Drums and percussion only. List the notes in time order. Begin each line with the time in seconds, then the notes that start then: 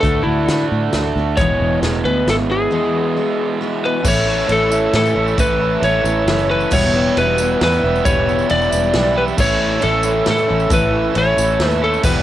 0.03 kick, closed hi-hat
0.48 snare, closed hi-hat
0.93 snare, closed hi-hat
1.37 kick, closed hi-hat
1.83 snare, closed hi-hat
2.27 snare, closed hi-hat
4.04 kick, crash, tambourine
4.49 ride, tambourine
4.72 tambourine
4.93 snare, ride, tambourine
5.06 tambourine
5.28 tambourine
5.38 kick, ride, tambourine
5.83 ride, tambourine
6.05 tambourine
6.28 snare, ride, tambourine
6.39 tambourine
6.61 tambourine
6.71 kick, tambourine, crash
7.17 ride, tambourine
7.38 tambourine
7.61 snare, ride, tambourine
7.72 tambourine
7.96 tambourine
8.05 kick, ride, tambourine
8.29 tambourine
8.39 tambourine
8.49 ride
8.62 tambourine
8.72 tambourine
8.84 tambourine
8.94 snare, ride
9.28 tambourine
9.38 kick, crash, tambourine
9.81 ride, tambourine
10.03 tambourine
10.26 snare, ride, tambourine
10.38 tambourine
10.60 tambourine
10.70 kick, ride, tambourine
11.15 ride, tambourine
11.38 tambourine
11.60 snare, ride, tambourine
11.71 tambourine
11.94 tambourine
12.03 kick, tambourine, crash